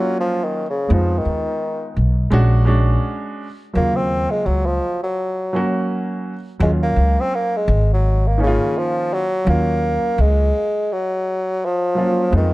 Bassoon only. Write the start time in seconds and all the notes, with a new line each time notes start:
Already playing: F#3
0.20 F3
0.44 D#3
0.70 C#3
0.93 F3
1.19 D#3
3.77 A#3
3.96 C4
4.31 G#3
4.46 F#3
4.66 F3
5.03 F#3
6.63 G#3
6.83 A#3
7.20 C4
7.35 A#3
7.57 G#3
7.93 F#3
8.27 A#3
8.42 C#3
8.78 F3
9.14 F#3
9.49 A#3
10.21 G#3
10.93 F#3
11.65 F3
12.37 D#3